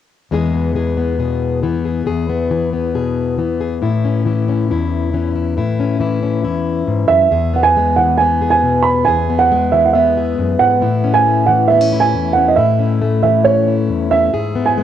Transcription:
0.31 steel-string acoustic guitar E2 E3 G#3 B3 G#4
0.54 steel-string acoustic guitar B3
0.75 steel-string acoustic guitar E3 G#4
0.97 steel-string acoustic guitar B3
1.19 steel-string acoustic guitar B2 G#4
1.63 steel-string acoustic guitar E3 B3
1.85 steel-string acoustic guitar G#4
2.06 steel-string acoustic guitar E2 G#4
2.29 steel-string acoustic guitar B3
2.50 steel-string acoustic guitar E3 G#4
2.73 steel-string acoustic guitar B3
2.94 steel-string acoustic guitar B2 G#4
3.38 steel-string acoustic guitar E3 B3
3.61 steel-string acoustic guitar G#4
3.82 steel-string acoustic guitar A2 E4
4.05 steel-string acoustic guitar C#4
4.26 steel-string acoustic guitar E3 E4
4.48 steel-string acoustic guitar C#4
4.70 steel-string acoustic guitar E2 E4
5.13 steel-string acoustic guitar E3 C#4
5.35 steel-string acoustic guitar E4
5.57 steel-string acoustic guitar A2 E4
5.80 steel-string acoustic guitar C#4
6.00 steel-string acoustic guitar E3 E4
6.23 steel-string acoustic guitar C#4
6.43 steel-string acoustic guitar E2 E4
6.87 steel-string acoustic guitar G#2
7.08 steel-string acoustic guitar F#2, upright piano E5
7.31 steel-string acoustic guitar E2 G#4
7.54 steel-string acoustic guitar B3, upright piano F#5
7.63 upright piano G#5
7.77 steel-string acoustic guitar G#3
7.96 steel-string acoustic guitar E3, upright piano F#5
8.17 steel-string acoustic guitar B3, upright piano G#5
8.42 steel-string acoustic guitar G#4
8.50 upright piano G#5
8.63 steel-string acoustic guitar B2
8.83 steel-string acoustic guitar B3, upright piano B5
9.05 steel-string acoustic guitar E2 G#4, upright piano G#5
9.30 steel-string acoustic guitar B3
9.39 upright piano F#5
9.52 steel-string acoustic guitar G#3
9.72 steel-string acoustic guitar E3, upright piano E5
9.86 upright piano F#5
9.93 steel-string acoustic guitar B3, upright piano E5
10.17 steel-string acoustic guitar G#4
10.38 steel-string acoustic guitar F#2
10.59 steel-string acoustic guitar G#2, upright piano F#5
10.82 steel-string acoustic guitar A2 E4
11.04 steel-string acoustic guitar C#4
11.14 upright piano G#5
11.27 steel-string acoustic guitar A3
11.47 steel-string acoustic guitar E3, upright piano F#5
11.68 steel-string acoustic guitar B3, upright piano E5
11.81 steel-string acoustic guitar C#4
11.93 steel-string acoustic guitar E4
12.00 upright piano G#5
12.14 steel-string acoustic guitar E2
12.33 steel-string acoustic guitar C#4, upright piano F#5
12.48 upright piano D#5
12.56 steel-string acoustic guitar A2 E4, upright piano E5
12.79 steel-string acoustic guitar C#4
13.02 steel-string acoustic guitar A3
13.23 steel-string acoustic guitar E3, upright piano E5
13.44 steel-string acoustic guitar C#4, upright piano C#5
13.67 steel-string acoustic guitar E4
13.89 steel-string acoustic guitar E2
14.11 steel-string acoustic guitar C#4, upright piano E5
14.33 steel-string acoustic guitar G#2 G#4
14.55 steel-string acoustic guitar B3
14.66 upright piano G#5
14.78 steel-string acoustic guitar G#3

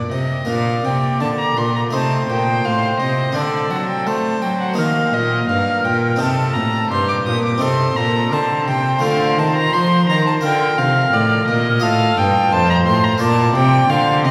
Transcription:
Already playing: cello A#2, harpsichord D4
0.12 harpsichord C3, cello C3, violin D#5
0.45 harpsichord A#2 A#3 D4, oboe D5
0.49 cello A#2, violin F5
0.85 harpsichord C3, cello C3, violin G5
1.21 harpsichord D3, cello D3, violin A5
1.39 violin A#5
1.57 harpsichord A#2, cello A#2, violin C6
1.76 violin A#5
1.91 cello C3, harpsichord C3 A3 D#4, oboe C5, violin A5
2.29 cello A#2, harpsichord A#2, violin G5
2.65 harpsichord A2, cello A2, violin F5
2.99 harpsichord C3, cello C3, violin D#5
3.32 harpsichord D3 C4 D4, cello D3, oboe A4, violin D5
3.70 harpsichord F#3, cello F#3, violin F#5
3.88 violin G5
4.06 cello A3, harpsichord A3, oboe C5, violin A5
4.42 harpsichord F#3, cello F#3, violin G5
4.61 violin F#5
4.74 harpsichord A#3 D#4 G4, violin F5
4.78 cello D#3, harpsichord D#3, oboe A#4
5.13 harpsichord A#2, cello A#2, violin D#5
5.49 harpsichord G2, cello G2, violin F5
5.84 harpsichord A#2, cello A#2, violin G5
6.16 harpsichord C4 D#4 G4, violin A5
6.20 harpsichord C3, cello C3, oboe A4
6.54 harpsichord A2, cello A2, violin A#5
6.90 cello G2, harpsichord G2, oboe G4, violin C6
7.09 violin D6
7.26 cello A#2, harpsichord A#2, violin D#6
7.44 violin D6
7.58 harpsichord C4 D#4 A4
7.62 cello C3, harpsichord C3, oboe A4, violin C6
7.97 cello A#2, harpsichord A#2, violin A#5
8.32 cello D3, harpsichord D3, oboe C5, violin A5
8.67 cello C3, harpsichord C3, violin G5
8.99 cello D3, harpsichord A3 F4 A4, violin F5
9.03 harpsichord D3
9.38 cello D#3, harpsichord D#3, violin A5
9.57 violin A#5
9.73 cello F3, harpsichord F3, violin C6
10.08 cello D#3, harpsichord D#3, violin A#5
10.26 violin A5
10.41 cello D3, harpsichord D3 F4 A#4, oboe A#4, violin G5
10.78 harpsichord C3, cello C3, violin F5
11.13 cello A2, harpsichord A2, violin D5
11.47 cello A#2, harpsichord A#2, violin D#5
11.80 harpsichord A2 F4 D#5, cello A2, oboe A4, violin F5
12.17 cello G2, harpsichord G2, violin G5
12.52 cello F2, harpsichord F2, oboe C5, violin A5
12.70 violin A#5
12.86 cello A2, harpsichord A2, violin C6
13.04 violin A#5
13.18 cello A#2, harpsichord A#2 F4 D5, oboe D5, violin A5
13.55 cello C3, harpsichord C3, violin G5
13.90 cello D3, harpsichord D3, oboe C5, violin F5
14.25 harpsichord C3, cello C3, violin D#5

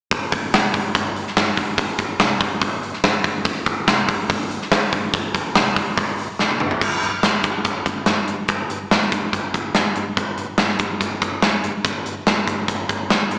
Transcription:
0.11 picked electric bass G1, kick, open hi-hat
0.32 picked electric bass G1, kick, open hi-hat
0.54 picked electric bass C2, snare, open hi-hat
0.74 picked electric bass G1, kick, open hi-hat
0.95 picked electric bass G1, kick, open hi-hat
1.16 open hi-hat
1.27 snare
1.36 picked electric bass G1, snare, open hi-hat
1.57 picked electric bass G1, kick, open hi-hat
1.78 picked electric bass G1, kick, open hi-hat
1.99 picked electric bass G1, kick, open hi-hat
2.20 picked electric bass C2, snare, open hi-hat
2.40 picked electric bass G1, kick, open hi-hat
2.62 picked electric bass G1, kick, open hi-hat
2.83 open hi-hat
2.93 snare
3.04 picked electric bass G1, snare, open hi-hat
3.24 picked electric bass G1, kick, open hi-hat
3.45 picked electric bass G1, kick, open hi-hat
3.66 picked electric bass G1, kick, open hi-hat
3.87 picked electric bass C2, snare, open hi-hat
4.08 picked electric bass G1, kick, open hi-hat
4.29 picked electric bass G1, kick, open hi-hat
4.51 open hi-hat
4.62 snare
4.71 picked electric bass G1, snare, open hi-hat
4.93 picked electric bass G1, kick, open hi-hat
5.14 picked electric bass G1, kick, open hi-hat
5.35 picked electric bass G1, kick, open hi-hat
5.55 picked electric bass C2, snare, open hi-hat
5.76 picked electric bass G1, kick, open hi-hat
5.97 picked electric bass G1, kick, open hi-hat
6.18 open hi-hat
6.39 picked electric bass G1, snare
6.51 high tom
6.60 picked electric bass G1, mid tom
6.71 floor tom
6.81 picked electric bass G1, kick, crash
7.03 picked electric bass G1, closed hi-hat
7.23 picked electric bass G1, snare, closed hi-hat
7.43 picked electric bass G1, kick, closed hi-hat
7.65 picked electric bass G1, kick, closed hi-hat
7.86 picked electric bass G1, kick, closed hi-hat
8.06 picked electric bass G1, snare, closed hi-hat
8.28 picked electric bass G1, closed hi-hat
8.48 picked electric bass G1, kick, closed hi-hat
8.70 picked electric bass G1, closed hi-hat
8.91 picked electric bass G1, snare, closed hi-hat
9.02 snare
9.12 picked electric bass G1, kick, closed hi-hat
9.33 picked electric bass G1, kick, closed hi-hat
9.54 picked electric bass G1, kick, closed hi-hat
9.75 picked electric bass G1, snare, closed hi-hat
9.96 picked electric bass G1, closed hi-hat
10.17 picked electric bass G1, kick, closed hi-hat
10.38 picked electric bass G1, closed hi-hat
10.58 picked electric bass G1, snare, closed hi-hat
10.69 snare
10.79 picked electric bass G1, kick, closed hi-hat
11.00 picked electric bass G1, kick, closed hi-hat
11.21 picked electric bass G1, kick, closed hi-hat
11.42 picked electric bass G1, snare, closed hi-hat
11.64 picked electric bass G1, closed hi-hat
11.85 picked electric bass G1, kick, closed hi-hat
12.05 picked electric bass G1, closed hi-hat
12.26 picked electric bass G1, snare, closed hi-hat
12.47 picked electric bass G1, kick, closed hi-hat
12.68 picked electric bass G1, kick, closed hi-hat
12.89 picked electric bass G1, kick, closed hi-hat
13.09 picked electric bass G1, snare, closed hi-hat
13.31 picked electric bass G1, closed hi-hat

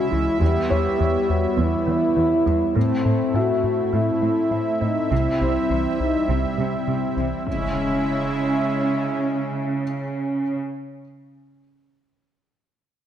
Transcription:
Already playing: analog synth pad G#3 C#4 E4 E5, french horn section F#4, felt piano E5, impact
0.11 analog synth bass C#2, cello section C#3, synth pluck E3, french horn section E4
0.40 cello section E2, analog synth bass E2, synth pluck E3, analog synth pad G3 B3, french horn section G4
0.70 cello section E2, analog synth bass E2, synth pluck E4, felt piano C#5
0.99 cello section E2, analog synth bass E2, synth pluck G3
1.29 analog synth bass E2, french horn section F#4
1.57 cello section E2, analog synth bass E2, synth pluck E3, french horn section E4
1.87 cello section E2, analog synth bass E3, synth pluck B3
2.17 cello section E2, analog synth bass E3, synth pluck B3
2.46 cello section E2, analog synth bass E2, synth pluck G3
2.76 cello section A2, analog synth bass A2, synth pluck A3, analog synth pad A3 C4 E4 E5, french horn section C4
3.05 cello section A2, analog synth bass A2, synth pluck A4
3.34 analog synth bass A2, cello section A2, synth pluck C4, french horn section F#4, felt piano E5
3.64 analog synth bass A2
3.93 analog synth bass A2, cello section A2, synth pluck A3, french horn section E4
4.22 cello section A2, analog synth bass A3, synth pluck E4
4.51 cello section A2, analog synth bass A3, synth pluck E4
4.81 cello section A2, analog synth bass A2, synth pluck C4, french horn section D#4
5.11 analog synth bass C2, synth pluck C3, cello section C3, analog synth pad G3, french horn section E4
5.40 analog synth bass C2, cello section C3, synth pluck C4, felt piano C4 C5
5.70 analog synth bass C2, cello section C3, synth pluck E3
6.00 analog synth bass C2, french horn section D#4
6.29 analog synth bass C2, cello section C3, synth pluck C3, french horn section C4
6.58 analog synth bass C3, cello section C3, synth pluck G3
6.88 cello section C3, analog synth bass C3, synth pluck G3
7.16 analog synth bass C2, cello section C3, synth pluck E3
7.46 cello section C#3, analog synth pad G#3 C#4 E4 E5, french horn section C#4, impact

